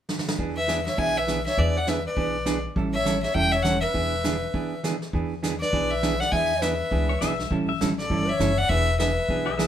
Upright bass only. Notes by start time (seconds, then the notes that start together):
0.39 E2
0.98 B1
1.58 E2
2.17 B1
2.76 A1
3.35 E1
3.95 E1
5.13 E2
5.73 B1
6.32 E2
6.92 C#2
7.21 B1
7.51 A1
7.81 A1
8.10 G1
8.39 F#1
8.69 E1
9.29 B1